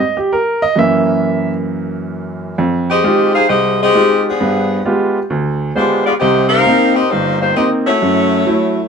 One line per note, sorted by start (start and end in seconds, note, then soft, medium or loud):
0.00 0.17 D#5 medium
0.17 0.31 G4 medium
0.33 0.62 A#4 medium
0.62 0.77 D#5 medium
0.76 2.54 F#2 soft
0.76 2.54 E3 soft
0.76 2.54 A#3 medium
0.76 1.50 E5 medium
2.58 2.98 F2 medium
2.90 3.32 C4 medium
2.90 3.32 G4 medium
2.90 3.32 G#4 medium
2.90 3.32 D#5 loud
3.04 3.36 G#3 medium
3.04 3.36 D#4 soft
3.04 3.36 F4 medium
3.04 3.36 G4 medium
3.34 3.48 D#4 loud
3.34 3.47 G#4 loud
3.34 3.48 C5 loud
3.34 3.48 F5 loud
3.48 3.88 C2 medium
3.48 3.77 C4 medium
3.48 3.77 G4 medium
3.48 3.77 G#4 medium
3.48 3.77 D#5 loud
3.82 4.23 C4 loud
3.82 4.23 G4 loud
3.82 4.23 G#4 loud
3.82 4.23 D#5 loud
3.94 4.26 G#3 medium
3.94 4.26 D#4 soft
3.94 4.26 F4 medium
3.94 4.26 G4 medium
4.28 4.87 F3 medium
4.28 4.87 B3 medium
4.28 4.86 D4 medium
4.28 4.87 G#4 loud
4.40 4.79 G2 medium
4.40 4.79 B3 medium
4.85 5.17 G#3 medium
4.85 5.17 B3 medium
4.85 5.17 F4 medium
4.85 5.17 G4 medium
5.30 5.69 D2 medium
5.76 6.07 G#3 medium
5.76 6.04 G#3 medium
5.76 6.07 B3 medium
5.76 6.04 D4 medium
5.76 6.08 F4 soft
5.76 6.04 F4 medium
5.76 6.08 G4 medium
5.76 6.04 C5 medium
6.06 6.13 B3 medium
6.06 6.12 F4 medium
6.06 6.12 G#4 medium
6.06 6.12 D5 loud
6.19 6.60 C2 medium
6.19 6.60 C3 medium
6.19 6.48 C4 medium
6.19 6.48 G4 loud
6.19 6.47 A#4 medium
6.19 6.49 D#5 loud
6.48 6.92 D#4 loud
6.48 6.92 A#4 loud
6.48 6.92 C5 loud
6.48 6.92 F5 loud
6.66 6.98 A#3 medium
6.66 6.98 C4 medium
6.66 6.98 D#4 medium
6.94 7.10 C4 loud
6.94 7.09 G4 loud
6.94 7.10 A#4 loud
6.94 7.10 D#5 loud
7.10 7.51 G1 medium
7.10 7.39 A#3 medium
7.10 7.39 D#4 medium
7.10 7.40 G4 medium
7.10 7.40 C5 medium
7.41 7.55 A#3 medium
7.41 7.55 D#4 medium
7.41 7.55 G4 medium
7.41 7.55 C5 loud
7.55 7.88 A#3 medium
7.55 7.69 C4 medium
7.55 7.88 C4 soft
7.55 7.88 D#4 medium
7.55 7.69 G4 medium
7.55 7.69 A#4 medium
7.55 7.70 D#5 medium
7.85 8.88 A3 medium
7.85 8.87 E4 medium
7.85 8.88 F#4 medium
7.85 8.88 C#5 loud
8.02 8.41 F#2 medium
8.46 8.78 F#3 medium
8.46 8.79 A3 soft
8.46 8.79 E4 medium